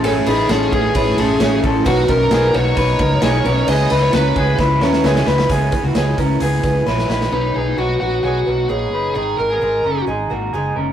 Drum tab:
RD |x-x-x-x-x-x-x-x-|x-x-x-x-x-x-x-x-|x-x-x-x---------|----------------|
HH |----------------|----------------|----------------|x-x-x-x-x-x-----|
SD |----o-------o---|----o-------o---|----o---o-oooooo|----o-------oooo|
BD |------o-o-----o-|o-o-----o-o-----|------o-o-------|o-o---o---o-----|

RD |----------------|----------------|
HH |----------------|----------------|
SD |----------------|----------------|
BD |----------------|----------------|